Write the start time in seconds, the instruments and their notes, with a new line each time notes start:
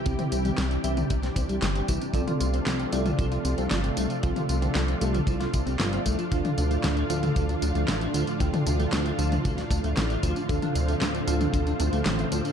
Already playing: analog synth pad C3 E3 G3 G4
0.06 analog synth bass C2, clean electric guitar C3, tine electric piano C3 C4 E4 G4 G5, analog synth pad D4, kick, closed hi-hat, tambourine
0.19 clean electric guitar C4, closed hi-hat, mid tom, tambourine
0.32 analog synth bass C2, clean electric guitar C4, closed hi-hat, tambourine
0.45 clean electric guitar G3, closed hi-hat, mid tom, tambourine
0.58 analog synth bass C2, clean electric guitar C3, snare, clap, closed hi-hat, tambourine
0.71 clean electric guitar G3, closed hi-hat, tambourine
0.84 analog synth bass C2, tine electric piano C3 C4 E4 G4 E5, clean electric guitar E3, closed hi-hat, tambourine
0.97 clean electric guitar C3, closed hi-hat, mid tom, tambourine
1.10 analog synth bass C2, clean electric guitar C3, kick, closed hi-hat, tambourine
1.23 clean electric guitar C4, snare, closed hi-hat, tambourine
1.36 analog synth bass C2, clean electric guitar C4, kick, closed hi-hat, tambourine
1.49 analog synth bass C2, clean electric guitar G3, closed hi-hat, tambourine
1.62 analog synth bass G1, clean electric guitar C3, snare, clap, closed hi-hat, tambourine
1.75 clean electric guitar G3, closed hi-hat, tambourine
1.88 analog synth bass C2, clean electric guitar E3, kick, closed hi-hat, tambourine
2.01 clean electric guitar C3, closed hi-hat, tambourine
2.14 analog synth bass C2, tine electric piano C3 C4 F4 A4 D5, clean electric guitar F3, analog synth pad F3 A3 F4, kick, closed hi-hat, tambourine
2.27 clean electric guitar F4, closed hi-hat, mid tom, tambourine
2.40 analog synth bass C2, clean electric guitar F4, closed hi-hat, tambourine
2.53 clean electric guitar C4, closed hi-hat, tambourine
2.67 analog synth bass C2, clean electric guitar F3, snare, clap, closed hi-hat, tambourine
2.80 clean electric guitar C4, closed hi-hat, tambourine
2.93 analog synth bass C2, tine electric piano C3 C4 F4 A4 D5, clean electric guitar A3, closed hi-hat, tambourine
3.06 clean electric guitar F3, closed hi-hat, mid tom, tambourine
3.19 analog synth bass C2, clean electric guitar F3, kick, closed hi-hat, tambourine
3.32 clean electric guitar F4, closed hi-hat, tambourine
3.45 analog synth bass C2, clean electric guitar F4, closed hi-hat, tambourine
3.58 analog synth bass C2, clean electric guitar C4, closed hi-hat, tambourine
3.71 analog synth bass G1, clean electric guitar F3, snare, clap, closed hi-hat, tambourine
3.84 clean electric guitar C4, closed hi-hat, tambourine
3.97 analog synth bass C2, clean electric guitar A3, closed hi-hat, tambourine
4.10 clean electric guitar F3, closed hi-hat, tambourine
4.23 analog synth bass C2, tine electric piano C3 C4 F4 A4 F5, clean electric guitar F3, kick, closed hi-hat, tambourine
4.36 clean electric guitar F4, closed hi-hat, mid tom, tambourine
4.49 analog synth bass C2, clean electric guitar F4, closed hi-hat, tambourine
4.62 clean electric guitar C4, closed hi-hat, mid tom, tambourine
4.75 analog synth bass C2, clean electric guitar F3, snare, clap, closed hi-hat, tambourine
4.88 clean electric guitar C4, closed hi-hat, tambourine
5.01 analog synth bass C2, tine electric piano C3 C4 F4 A4 D5, clean electric guitar A3, closed hi-hat, tambourine
5.14 clean electric guitar F3, closed hi-hat, mid tom, tambourine
5.27 analog synth bass C2, clean electric guitar F3, kick, closed hi-hat, tambourine
5.40 clean electric guitar F4, snare, closed hi-hat, tambourine
5.53 analog synth bass C2, clean electric guitar F4, kick, closed hi-hat, tambourine
5.66 analog synth bass C2, clean electric guitar C4, closed hi-hat, tambourine
5.79 analog synth bass G1, clean electric guitar F3, snare, clap, closed hi-hat, tambourine
5.93 clean electric guitar C4, closed hi-hat, tambourine
6.05 analog synth bass C2, clean electric guitar A3, kick, closed hi-hat, tambourine
6.19 clean electric guitar F3, closed hi-hat, tambourine
6.31 analog synth bass D2, analog synth pad A2 D3, clean electric guitar D3, tine electric piano D3 D4 F4 A4 F5, kick, closed hi-hat, tambourine
6.45 clean electric guitar D4, closed hi-hat, mid tom, tambourine
6.58 analog synth bass D2, clean electric guitar D4, closed hi-hat, tambourine
6.71 clean electric guitar A3, closed hi-hat, tambourine
6.84 analog synth bass D2, clean electric guitar D3, snare, clap, closed hi-hat, tambourine
6.97 clean electric guitar A3, closed hi-hat, tambourine
7.10 analog synth bass D2, tine electric piano D3 D4 F4 A4 F5, clean electric guitar F3, closed hi-hat, tambourine
7.23 clean electric guitar D3, closed hi-hat, mid tom, tambourine
7.36 analog synth bass D2, clean electric guitar D3, kick, closed hi-hat, tambourine
7.49 clean electric guitar D4, closed hi-hat, tambourine
7.62 analog synth bass D2, clean electric guitar D4, closed hi-hat, tambourine
7.75 analog synth bass D2, clean electric guitar A3, closed hi-hat, tambourine
7.88 analog synth bass A1, clean electric guitar D3, snare, clap, closed hi-hat, tambourine
8.01 clean electric guitar A3, closed hi-hat, tambourine
8.14 analog synth bass D2, clean electric guitar F3, closed hi-hat, tambourine
8.27 clean electric guitar D3, closed hi-hat, tambourine
8.40 analog synth bass D2, clean electric guitar D3, tine electric piano D3 D4 F4 A4 G5, kick, closed hi-hat, tambourine
8.53 clean electric guitar D4, closed hi-hat, mid tom, tambourine
8.66 analog synth bass D2, clean electric guitar D4, closed hi-hat, tambourine
8.79 clean electric guitar A3, closed hi-hat, mid tom, tambourine
8.93 analog synth bass D2, clean electric guitar D3, snare, clap, closed hi-hat, tambourine
9.05 clean electric guitar A3, closed hi-hat, tambourine
9.19 analog synth bass D2, tine electric piano D3 D4 F4 A4 F5, clean electric guitar F3, closed hi-hat, tambourine
9.32 clean electric guitar D3, closed hi-hat, mid tom, tambourine
9.45 analog synth bass D2, clean electric guitar D3, kick, closed hi-hat, tambourine
9.58 clean electric guitar D4, snare, closed hi-hat, tambourine
9.71 analog synth bass D2, clean electric guitar D4, kick, closed hi-hat, tambourine
9.84 analog synth bass D2, clean electric guitar A3, closed hi-hat, tambourine
9.97 analog synth bass A1, clean electric guitar D3, snare, clap, closed hi-hat, tambourine
10.10 clean electric guitar A3, closed hi-hat, tambourine
10.23 analog synth bass D2, clean electric guitar F3, kick, closed hi-hat, tambourine
10.36 clean electric guitar D3, closed hi-hat, tambourine
10.49 analog synth bass D2, tine electric piano D3 D4 F4 A4 F5, clean electric guitar D3, analog synth pad C4, kick, closed hi-hat, tambourine
10.62 clean electric guitar D4, closed hi-hat, mid tom, tambourine
10.75 analog synth bass D2, clean electric guitar D4, closed hi-hat, tambourine
10.88 clean electric guitar A3, closed hi-hat, tambourine
11.01 analog synth bass D2, clean electric guitar D3, snare, clap, closed hi-hat, tambourine
11.14 clean electric guitar A3, closed hi-hat, tambourine
11.27 analog synth bass D2, tine electric piano D3 D4 F4 A4 F5, clean electric guitar F3, closed hi-hat, tambourine
11.41 clean electric guitar D3, closed hi-hat, mid tom, tambourine
11.54 analog synth bass D2, clean electric guitar D3, kick, closed hi-hat, tambourine
11.67 clean electric guitar D4, closed hi-hat, tambourine
11.80 analog synth bass D2, clean electric guitar D4, closed hi-hat, tambourine
11.93 analog synth bass D2, clean electric guitar A3, closed hi-hat, tambourine
12.06 analog synth bass A1, clean electric guitar D3, snare, clap, closed hi-hat, tambourine
12.19 clean electric guitar A3, closed hi-hat, tambourine
12.32 analog synth bass D2, clean electric guitar F3, closed hi-hat, tambourine
12.45 clean electric guitar D3, closed hi-hat, tambourine